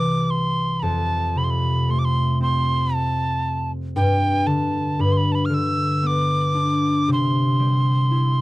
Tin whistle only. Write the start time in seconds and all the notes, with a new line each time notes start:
Already playing: D6
0.24 D6
0.30 C6
0.80 A5 B5
1.38 B5
1.44 C6
1.50 B5
1.91 C6
1.99 D6
2.05 C6
2.42 C6
2.94 A5
3.96 G5
4.47 A5
5.01 B5
5.12 C6
5.17 B5
5.32 A5 B5
5.45 F6
5.54 E6
6.07 D6
7.13 C6